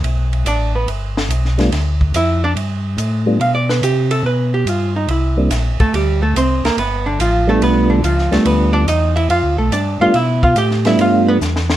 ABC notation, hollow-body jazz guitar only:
X:1
M:4/4
L:1/8
Q:"Swing" 1/4=142
K:Gmix
V:1 name="Hollow-body jazz guitar"
z2 [Dd] [B,B] z4 | z2 [Ee] [Dd] z4 | (3f d B G A B G F _E | E2 z [A,A] [G,G] [A,A] [Cc] [_B,_B] |
[B,B] [D,D] [F,F] [A,A] [B,B] [D,D] [F,F] [A,A] | [B,B] [Dd] [_E_e] [=E=e] [Ff] [A,A] [Dd] [Ff] | [Ee] [Ff] [Gg] [Ee] [Ff] [B,B] z2 |]